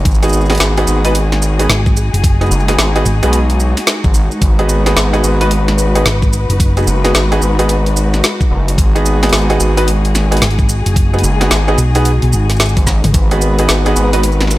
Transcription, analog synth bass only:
0.05 0.58 G#1 medium
0.60 0.85 G#1 loud
0.87 1.67 G#1 medium
2.51 2.77 F#1 loud
2.78 3.04 G#1 loud
3.23 3.74 B1 medium
4.04 4.29 G#1 loud
4.42 4.95 G#1 medium
4.96 5.22 G#1 loud
5.23 6.04 G#1 medium
6.87 7.13 F#1 loud
7.15 7.40 G#1 loud
7.42 8.22 G#1 medium
8.51 8.77 F#1 loud
8.78 9.31 G#1 loud
9.32 9.58 G#1 loud
9.60 10.40 G#1 medium
11.23 11.49 F#1 loud
11.51 11.76 G#1 loud
12.77 13.02 G#1 loud
13.14 13.67 G#1 loud
13.69 13.95 G#1 loud
13.96 14.58 G#1 medium

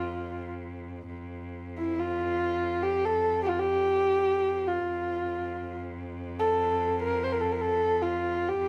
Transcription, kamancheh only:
0.00 0.50 F4 medium
1.78 2.02 E4 medium
2.00 2.85 F4 medium
2.83 3.06 G4 medium
3.05 3.43 A4 medium
3.43 3.50 G4 medium
3.48 3.60 F4 medium
3.59 4.69 G4 medium
4.68 5.79 F4 medium
6.39 6.99 A4 medium
7.02 7.25 A#4 medium
7.23 7.33 C5 medium
7.32 7.42 A#4 medium
7.41 7.53 A4 medium
7.52 7.63 A#4 medium
7.61 8.04 A4 medium
8.02 8.50 F4 medium
8.48 8.69 G4 medium

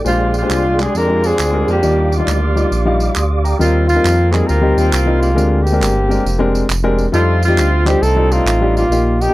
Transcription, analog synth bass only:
0.05 0.43 A#1 loud
0.49 0.87 C2 loud
0.95 1.32 F2 loud
1.39 1.63 D2 loud
1.68 1.81 F2 medium
1.83 2.21 D#2 loud
2.27 2.65 D2 loud
2.71 3.09 A#1 medium
3.17 3.54 D2 medium
3.60 3.98 D#2 loud
4.04 4.42 F2 loud
4.49 4.74 D2 loud
4.77 4.91 D#2 loud
4.92 5.39 C2 medium
5.37 5.82 D2 loud
5.81 6.19 G1 loud
6.25 6.63 F1 loud
6.69 7.07 F1 loud
7.13 7.59 F2 loud
7.58 7.96 D2 loud
8.02 8.40 C2 loud
8.45 8.84 A1 loud
8.90 9.28 A#1 loud

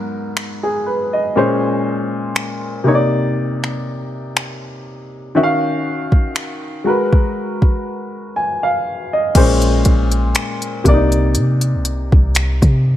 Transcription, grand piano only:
0.00 1.31 G#2 medium
0.00 1.31 F#3 medium
0.00 1.32 B3 medium
0.00 1.38 A#4 medium
0.63 0.85 G#4 medium
0.86 1.11 B4 medium
1.13 1.60 D#5 medium
1.36 2.85 A#2 medium
1.36 2.86 G#3 medium
1.36 2.86 C#4 medium
1.36 2.86 C5 medium
2.84 5.31 C3 medium
2.84 5.31 A#3 medium
2.84 5.32 D#4 medium
2.88 2.94 C#5 medium
2.95 5.36 D5 medium
5.35 6.85 D#3 medium
5.35 6.85 C#4 medium
5.35 6.84 F#4 medium
5.35 5.43 E5 medium
5.43 6.89 F5 medium
6.84 9.31 G#3 medium
6.84 9.31 F#4 medium
6.84 9.32 A#4 medium
6.88 9.33 B4 medium
8.36 8.61 G#5 medium
8.63 9.10 F5 medium
9.13 9.60 D#5 medium
9.35 10.85 A#2 medium
9.35 10.86 G#3 medium
9.35 10.86 C#4 medium
9.35 10.86 C5 medium
10.84 12.97 C3 medium
10.84 12.97 A#3 medium
10.84 10.93 D4 soft
10.88 12.97 D5 medium
10.93 12.97 D#4 medium

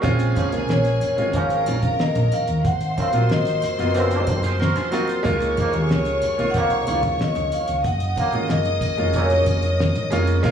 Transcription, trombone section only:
0.36 0.50 G#2 medium
0.36 0.50 F3 medium
0.36 0.50 C#4 medium
1.34 1.81 G#2 medium
1.34 1.81 F3 medium
1.34 1.81 C#4 medium
2.97 3.11 F#2 medium
2.97 3.11 F3 medium
2.97 3.11 C4 medium
3.95 4.41 F#2 medium
3.95 4.41 F3 medium
3.95 4.41 C4 medium
5.57 5.71 F2 medium
5.57 5.71 D#3 medium
5.57 5.71 A#3 medium
6.55 7.01 F2 medium
6.55 7.01 D#3 medium
6.55 7.01 A#3 medium
8.17 8.31 F#2 medium
8.17 8.31 F3 medium
8.17 8.31 A#3 medium
9.15 9.61 A#2 medium
9.15 9.61 F#3 medium
9.15 9.61 C#4 medium

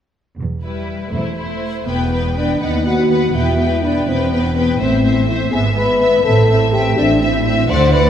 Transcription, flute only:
1.88 2.34 B4 soft
2.37 2.61 D5 soft
2.62 2.85 D#5 soft
2.86 3.36 F#5 soft
3.35 3.83 E5 soft
3.84 4.10 D5 soft
4.09 4.32 C5 soft
4.33 4.82 B4 soft
4.80 5.28 C5 soft
5.28 5.34 E5 soft
5.53 5.59 G#5 medium
5.77 6.25 B5 soft
6.25 6.52 A5 medium
6.74 6.97 G5 soft
6.98 7.04 D5 medium
7.22 7.71 E5 medium
7.70 7.95 C6 medium
7.93 8.10 B5 medium

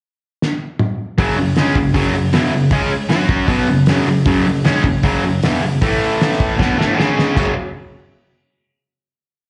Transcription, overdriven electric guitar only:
1.18 1.36 F#2 loud
1.18 1.37 C#3 medium
1.18 1.37 F#3 loud
1.37 1.52 F#2 medium
1.37 1.53 C#3 medium
1.57 1.75 C#3 medium
1.57 1.76 G#3 medium
1.57 1.76 C#4 loud
1.76 1.91 F#2 medium
1.76 1.92 C#3 medium
1.94 2.13 F#2 loud
1.94 2.13 C#3 loud
1.94 2.14 F#3 loud
2.15 2.30 F#2 medium
2.15 2.30 C#3 medium
2.33 2.52 E2 loud
2.33 2.52 B2 loud
2.33 2.52 E3 loud
2.53 2.68 F#2 medium
2.53 2.68 C#3 medium
2.72 2.91 C#3 medium
2.72 2.91 G#3 loud
2.72 2.91 C#4 loud
3.09 3.47 F#3 medium
3.09 3.48 C#4 medium
3.09 3.49 F#4 medium
3.48 3.67 B2 loud
3.48 3.68 F#3 loud
3.48 3.68 B3 loud
3.68 3.84 F#2 medium
3.68 3.84 C#3 medium
3.88 4.06 F#2 medium
3.88 4.07 C#3 medium
3.88 4.08 F#3 loud
4.08 4.23 F#2 medium
4.08 4.23 C#3 medium
4.26 4.45 F#2 medium
4.26 4.45 C#3 medium
4.26 4.46 F#3 loud
4.46 4.62 F#2 medium
4.46 4.62 C#3 medium
4.65 4.84 C#3 medium
4.65 4.84 G#3 loud
4.65 4.84 C#4 loud
4.85 5.00 F#2 medium
4.85 5.00 C#3 medium
5.04 5.22 F#2 loud
5.04 5.23 C#3 loud
5.04 5.23 F#3 loud
5.25 5.39 F#2 medium
5.25 5.39 C#3 medium
5.44 5.62 E2 loud
5.44 5.62 B2 loud
5.44 5.63 E3 medium
5.63 5.78 F#2 medium
5.63 5.78 C#3 medium
5.82 6.58 A2 medium
5.82 6.58 E3 medium
5.82 6.59 A3 loud
6.58 6.77 B2 medium
6.58 6.78 F#3 loud
6.58 6.78 B3 loud
6.77 6.96 A2 loud
6.77 6.97 E3 medium
6.77 6.98 A3 loud
6.96 7.35 C#3 medium
6.96 7.35 G#3 medium
6.96 7.36 C#4 loud
7.36 7.52 F#2 medium
7.36 7.52 C#3 loud
7.36 7.53 F#3 loud

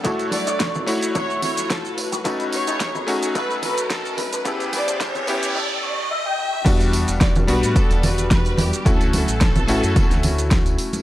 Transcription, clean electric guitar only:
0.04 0.26 D4 loud
0.04 0.26 F#4 loud
0.04 0.26 C#5 loud
0.47 0.81 D4 medium
0.47 0.81 F#4 medium
0.47 0.82 C#5 medium
1.15 1.57 D4 medium
1.15 1.58 F#4 medium
1.15 1.58 C#5 loud
1.97 muted clean electric guitar stroke soft
2.12 muted clean electric guitar stroke medium
2.25 2.46 D#4 loud
2.25 2.47 A4 loud
2.25 2.47 B4 loud
2.67 3.01 D#4 medium
2.67 3.01 A4 medium
2.67 3.02 B4 medium
3.35 3.78 D#4 medium
3.35 3.78 A4 medium
3.35 3.78 B4 loud
4.18 muted clean electric guitar stroke soft
4.33 muted clean electric guitar stroke medium
4.45 4.67 C#4 loud
4.45 4.67 G4 loud
4.45 4.67 A4 loud
4.87 5.21 C#4 medium
4.87 5.22 G4 medium
4.87 5.22 A4 loud
5.55 5.98 C#4 medium
5.55 5.98 G4 medium
5.55 5.98 A4 loud
5.83 6.09 C#5 medium
6.11 6.25 E5 medium
6.26 6.37 G5 medium
6.38 6.64 G5 medium
6.38 muted clean electric guitar stroke soft
6.52 muted clean electric guitar stroke loud

